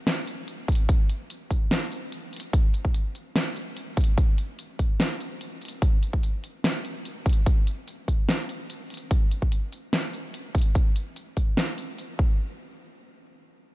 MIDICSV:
0, 0, Header, 1, 2, 480
1, 0, Start_track
1, 0, Tempo, 410959
1, 1038, Time_signature, 4, 2, 24, 8
1, 16059, End_track
2, 0, Start_track
2, 0, Title_t, "Drums"
2, 79, Note_on_c, 9, 38, 119
2, 79, Note_on_c, 9, 42, 82
2, 196, Note_off_c, 9, 38, 0
2, 196, Note_off_c, 9, 42, 0
2, 319, Note_on_c, 9, 42, 67
2, 436, Note_off_c, 9, 42, 0
2, 559, Note_on_c, 9, 42, 88
2, 676, Note_off_c, 9, 42, 0
2, 798, Note_on_c, 9, 36, 108
2, 800, Note_on_c, 9, 42, 50
2, 842, Note_off_c, 9, 42, 0
2, 842, Note_on_c, 9, 42, 67
2, 879, Note_off_c, 9, 42, 0
2, 879, Note_on_c, 9, 42, 79
2, 915, Note_off_c, 9, 36, 0
2, 996, Note_off_c, 9, 42, 0
2, 1038, Note_on_c, 9, 36, 125
2, 1039, Note_on_c, 9, 42, 84
2, 1155, Note_off_c, 9, 36, 0
2, 1156, Note_off_c, 9, 42, 0
2, 1279, Note_on_c, 9, 42, 73
2, 1396, Note_off_c, 9, 42, 0
2, 1520, Note_on_c, 9, 42, 83
2, 1637, Note_off_c, 9, 42, 0
2, 1758, Note_on_c, 9, 36, 66
2, 1761, Note_on_c, 9, 42, 69
2, 1875, Note_off_c, 9, 36, 0
2, 1877, Note_off_c, 9, 42, 0
2, 1999, Note_on_c, 9, 38, 119
2, 1999, Note_on_c, 9, 42, 81
2, 2116, Note_off_c, 9, 38, 0
2, 2116, Note_off_c, 9, 42, 0
2, 2240, Note_on_c, 9, 42, 68
2, 2357, Note_off_c, 9, 42, 0
2, 2480, Note_on_c, 9, 42, 87
2, 2597, Note_off_c, 9, 42, 0
2, 2720, Note_on_c, 9, 42, 51
2, 2762, Note_off_c, 9, 42, 0
2, 2762, Note_on_c, 9, 42, 68
2, 2801, Note_off_c, 9, 42, 0
2, 2801, Note_on_c, 9, 42, 85
2, 2918, Note_off_c, 9, 42, 0
2, 2959, Note_on_c, 9, 36, 126
2, 2960, Note_on_c, 9, 42, 83
2, 3076, Note_off_c, 9, 36, 0
2, 3077, Note_off_c, 9, 42, 0
2, 3199, Note_on_c, 9, 42, 72
2, 3316, Note_off_c, 9, 42, 0
2, 3325, Note_on_c, 9, 36, 67
2, 3439, Note_on_c, 9, 42, 86
2, 3442, Note_off_c, 9, 36, 0
2, 3556, Note_off_c, 9, 42, 0
2, 3680, Note_on_c, 9, 42, 62
2, 3796, Note_off_c, 9, 42, 0
2, 3920, Note_on_c, 9, 38, 126
2, 3920, Note_on_c, 9, 42, 81
2, 4037, Note_off_c, 9, 38, 0
2, 4037, Note_off_c, 9, 42, 0
2, 4159, Note_on_c, 9, 42, 67
2, 4276, Note_off_c, 9, 42, 0
2, 4399, Note_on_c, 9, 42, 83
2, 4516, Note_off_c, 9, 42, 0
2, 4638, Note_on_c, 9, 36, 110
2, 4639, Note_on_c, 9, 42, 50
2, 4680, Note_off_c, 9, 42, 0
2, 4680, Note_on_c, 9, 42, 63
2, 4717, Note_off_c, 9, 42, 0
2, 4717, Note_on_c, 9, 42, 80
2, 4755, Note_off_c, 9, 36, 0
2, 4834, Note_off_c, 9, 42, 0
2, 4878, Note_on_c, 9, 36, 127
2, 4878, Note_on_c, 9, 42, 78
2, 4995, Note_off_c, 9, 36, 0
2, 4995, Note_off_c, 9, 42, 0
2, 5118, Note_on_c, 9, 42, 64
2, 5234, Note_off_c, 9, 42, 0
2, 5358, Note_on_c, 9, 42, 78
2, 5475, Note_off_c, 9, 42, 0
2, 5598, Note_on_c, 9, 36, 60
2, 5598, Note_on_c, 9, 42, 61
2, 5714, Note_off_c, 9, 36, 0
2, 5715, Note_off_c, 9, 42, 0
2, 5838, Note_on_c, 9, 38, 121
2, 5838, Note_on_c, 9, 42, 78
2, 5955, Note_off_c, 9, 38, 0
2, 5955, Note_off_c, 9, 42, 0
2, 6079, Note_on_c, 9, 42, 64
2, 6195, Note_off_c, 9, 42, 0
2, 6319, Note_on_c, 9, 42, 80
2, 6435, Note_off_c, 9, 42, 0
2, 6559, Note_on_c, 9, 42, 48
2, 6601, Note_off_c, 9, 42, 0
2, 6601, Note_on_c, 9, 42, 61
2, 6639, Note_off_c, 9, 42, 0
2, 6639, Note_on_c, 9, 42, 82
2, 6755, Note_off_c, 9, 42, 0
2, 6798, Note_on_c, 9, 36, 126
2, 6799, Note_on_c, 9, 42, 79
2, 6914, Note_off_c, 9, 36, 0
2, 6916, Note_off_c, 9, 42, 0
2, 7039, Note_on_c, 9, 42, 64
2, 7156, Note_off_c, 9, 42, 0
2, 7163, Note_on_c, 9, 36, 64
2, 7280, Note_off_c, 9, 36, 0
2, 7280, Note_on_c, 9, 42, 73
2, 7397, Note_off_c, 9, 42, 0
2, 7519, Note_on_c, 9, 42, 63
2, 7636, Note_off_c, 9, 42, 0
2, 7759, Note_on_c, 9, 38, 123
2, 7759, Note_on_c, 9, 42, 76
2, 7875, Note_off_c, 9, 38, 0
2, 7875, Note_off_c, 9, 42, 0
2, 7999, Note_on_c, 9, 42, 63
2, 8115, Note_off_c, 9, 42, 0
2, 8238, Note_on_c, 9, 42, 77
2, 8355, Note_off_c, 9, 42, 0
2, 8478, Note_on_c, 9, 36, 113
2, 8479, Note_on_c, 9, 42, 49
2, 8520, Note_off_c, 9, 42, 0
2, 8520, Note_on_c, 9, 42, 60
2, 8559, Note_off_c, 9, 42, 0
2, 8559, Note_on_c, 9, 42, 76
2, 8594, Note_off_c, 9, 36, 0
2, 8675, Note_off_c, 9, 42, 0
2, 8718, Note_on_c, 9, 36, 119
2, 8718, Note_on_c, 9, 42, 77
2, 8835, Note_off_c, 9, 36, 0
2, 8835, Note_off_c, 9, 42, 0
2, 8959, Note_on_c, 9, 42, 66
2, 9075, Note_off_c, 9, 42, 0
2, 9200, Note_on_c, 9, 42, 75
2, 9316, Note_off_c, 9, 42, 0
2, 9438, Note_on_c, 9, 36, 59
2, 9439, Note_on_c, 9, 42, 61
2, 9555, Note_off_c, 9, 36, 0
2, 9556, Note_off_c, 9, 42, 0
2, 9679, Note_on_c, 9, 38, 113
2, 9679, Note_on_c, 9, 42, 74
2, 9796, Note_off_c, 9, 38, 0
2, 9796, Note_off_c, 9, 42, 0
2, 9919, Note_on_c, 9, 42, 63
2, 10035, Note_off_c, 9, 42, 0
2, 10159, Note_on_c, 9, 42, 77
2, 10276, Note_off_c, 9, 42, 0
2, 10399, Note_on_c, 9, 42, 47
2, 10441, Note_off_c, 9, 42, 0
2, 10441, Note_on_c, 9, 42, 62
2, 10479, Note_off_c, 9, 42, 0
2, 10479, Note_on_c, 9, 42, 76
2, 10596, Note_off_c, 9, 42, 0
2, 10639, Note_on_c, 9, 36, 115
2, 10639, Note_on_c, 9, 42, 79
2, 10755, Note_off_c, 9, 42, 0
2, 10756, Note_off_c, 9, 36, 0
2, 10878, Note_on_c, 9, 42, 68
2, 10995, Note_off_c, 9, 42, 0
2, 11005, Note_on_c, 9, 36, 63
2, 11119, Note_on_c, 9, 42, 81
2, 11121, Note_off_c, 9, 36, 0
2, 11236, Note_off_c, 9, 42, 0
2, 11358, Note_on_c, 9, 42, 63
2, 11475, Note_off_c, 9, 42, 0
2, 11598, Note_on_c, 9, 38, 114
2, 11598, Note_on_c, 9, 42, 80
2, 11714, Note_off_c, 9, 38, 0
2, 11714, Note_off_c, 9, 42, 0
2, 11838, Note_on_c, 9, 42, 62
2, 11954, Note_off_c, 9, 42, 0
2, 12078, Note_on_c, 9, 42, 80
2, 12195, Note_off_c, 9, 42, 0
2, 12318, Note_on_c, 9, 42, 47
2, 12319, Note_on_c, 9, 36, 104
2, 12360, Note_off_c, 9, 42, 0
2, 12360, Note_on_c, 9, 42, 65
2, 12398, Note_off_c, 9, 42, 0
2, 12398, Note_on_c, 9, 42, 74
2, 12436, Note_off_c, 9, 36, 0
2, 12515, Note_off_c, 9, 42, 0
2, 12558, Note_on_c, 9, 42, 81
2, 12559, Note_on_c, 9, 36, 114
2, 12674, Note_off_c, 9, 42, 0
2, 12675, Note_off_c, 9, 36, 0
2, 12798, Note_on_c, 9, 42, 72
2, 12915, Note_off_c, 9, 42, 0
2, 13038, Note_on_c, 9, 42, 83
2, 13155, Note_off_c, 9, 42, 0
2, 13277, Note_on_c, 9, 42, 65
2, 13278, Note_on_c, 9, 36, 56
2, 13394, Note_off_c, 9, 42, 0
2, 13395, Note_off_c, 9, 36, 0
2, 13517, Note_on_c, 9, 38, 117
2, 13517, Note_on_c, 9, 42, 82
2, 13634, Note_off_c, 9, 38, 0
2, 13634, Note_off_c, 9, 42, 0
2, 13758, Note_on_c, 9, 42, 67
2, 13874, Note_off_c, 9, 42, 0
2, 13998, Note_on_c, 9, 42, 83
2, 14115, Note_off_c, 9, 42, 0
2, 14238, Note_on_c, 9, 36, 115
2, 14355, Note_off_c, 9, 36, 0
2, 16059, End_track
0, 0, End_of_file